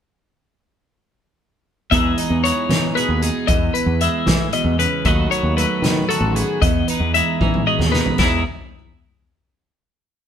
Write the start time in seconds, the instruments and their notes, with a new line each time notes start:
1.91 clean electric guitar E2 E3 G#3 D#4 G#4 E5, fingered electric bass E2, kick, closed hi-hat
2.18 clean electric guitar D#4 D#5, closed hi-hat
2.30 fingered electric bass E2
2.44 clean electric guitar E3 G#3 C#5, closed hi-hat
2.69 fingered electric bass E3, clean electric guitar D#4, snare, closed hi-hat
2.95 clean electric guitar B2 G#4 B4, closed hi-hat
3.09 fingered electric bass D#2
3.22 clean electric guitar D#4 G#4, closed hi-hat
3.47 clean electric guitar E2 D#5, fingered electric bass E2, kick, closed hi-hat
3.74 clean electric guitar B4, closed hi-hat
3.86 fingered electric bass E2
4.01 clean electric guitar E3 G#3 E5, closed hi-hat
4.26 clean electric guitar A2, fingered electric bass E3, kick, snare, closed hi-hat
4.53 clean electric guitar B2 D#5, closed hi-hat
4.65 fingered electric bass E2
4.79 clean electric guitar C#3 B4, closed hi-hat
5.05 fingered electric bass D#2, clean electric guitar D#3 F#3 A3 B3 F#4 D#5, kick, closed hi-hat
5.31 clean electric guitar B3 C#5, closed hi-hat
5.43 fingered electric bass D#2
5.57 clean electric guitar F#3 A3 B4, closed hi-hat
5.82 fingered electric bass D#3, clean electric guitar B3, snare, closed hi-hat
6.09 clean electric guitar D#3 F#4 A4, closed hi-hat
6.21 fingered electric bass A1
6.35 clean electric guitar B3 G#4, closed hi-hat
6.61 clean electric guitar E2 D#5, fingered electric bass E2, kick, closed hi-hat
6.88 clean electric guitar D#4 B4, closed hi-hat
7.00 fingered electric bass E2
7.14 clean electric guitar E3 G#3 E5, closed hi-hat
7.41 fingered electric bass E3, clean electric guitar D#4, kick, high tom
7.54 high tom
7.67 clean electric guitar B2 G#4 D#5
7.79 fingered electric bass D#2, snare
7.92 clean electric guitar D#4 B4, snare
8.06 floor tom
8.18 fingered electric bass E2, clean electric guitar E2 E3 G#3 D#4 E4, kick, snare, crash
8.22 clean electric guitar G#4